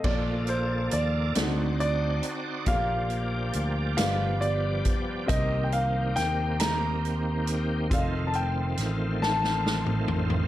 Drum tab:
CC |x-----------|------------|------------|------------|
HH |--x-x-x-x-x-|x-x-x-x-x-x-|x-x-x-x-x-x-|x-x-x-------|
SD |------o-----|------o-----|----o-o-----|----o-ooo---|
T2 |------------|------------|------------|---------o--|
FT |------------|------------|------------|----------oo|
BD |o-----------|o---------o-|o-----------|o-----------|